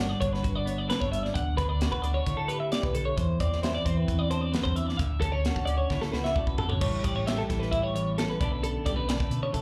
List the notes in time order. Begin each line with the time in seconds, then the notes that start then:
Already playing: G1 G2 F#4
0.00 D4
0.09 D5
0.20 G1 D3 C#5, kick, closed hi-hat
0.33 B4, snare
0.43 G1 F#4, kick, closed hi-hat
0.56 D5
0.66 B3 C#5, closed hi-hat
0.78 D5
0.88 D3 B4, snare, closed hi-hat
1.00 G1 C#5, kick
1.12 G2 E5, closed hi-hat
1.23 D5, snare
1.33 D2 F#5, kick, closed hi-hat
1.57 D2 D4 B4, kick, closed hi-hat
1.69 D5
1.81 F#4, snare, closed hi-hat
1.92 D2 B4, kick
2.02 D4 D5, closed hi-hat
2.14 C#5
2.26 A2 D3, kick, closed hi-hat
2.37 A4
2.48 G4 B4, closed hi-hat
2.60 E5
2.72 D5, snare, closed hi-hat
2.83 B1 B4, kick
2.94 D2 A4, closed hi-hat
3.05 C#5
3.16 E2 C5, kick, closed hi-hat
3.40 E2 C4 D5, kick, closed hi-hat
3.53 snare
3.63 E4 C5, snare, closed hi-hat
3.75 D5
3.85 E2 C4 C5, kick, closed hi-hat
3.97 B4
4.07 E2, kick, closed hi-hat
4.19 D5
4.31 D4 C5, closed hi-hat
4.41 D5
4.52 F#2 B4, snare, closed hi-hat
4.64 E2 C5, kick
4.76 E2 E5, closed hi-hat
4.87 D5, snare
4.97 D2 E5, kick, closed hi-hat
5.21 D2 C#4 A4, kick, closed hi-hat
5.32 C#5
5.45 F#4, snare, closed hi-hat
5.55 D2 A4, kick
5.65 C#4 D5, closed hi-hat
5.78 C#5
5.90 A2 D3, kick, snare
6.02 A4, snare
6.12 C#2 F#4 B4, snare
6.24 E5, snare
6.35 B1 A3 D5, kick
6.46 B4, kick
6.57 A1 D3 A4, floor tom
6.69 C#5, floor tom
6.81 A1 A2 G3 C#5, kick, crash
7.03 A1 G4 D5, kick, closed hi-hat
7.16 C#5
7.27 G3 E5, snare, closed hi-hat
7.38 A4
7.49 A1 E3, kick, snare, closed hi-hat
7.59 B4, snare
7.71 E4, kick, closed hi-hat
7.83 C#5
7.95 E2 C#5, closed hi-hat
8.18 C#4 A4, snare, closed hi-hat
8.29 B4
8.41 B1 B2 D3 A3 C#4 D4 D5, kick, closed hi-hat
8.52 B4
8.63 D4 A4, closed hi-hat
8.85 B1 G3 D5, kick, closed hi-hat
8.96 A3 B4
9.08 D3 D5, snare, closed hi-hat
9.20 B4, kick
9.30 B2, closed hi-hat
9.43 C#5
9.52 B1 F#2 A4, kick, closed hi-hat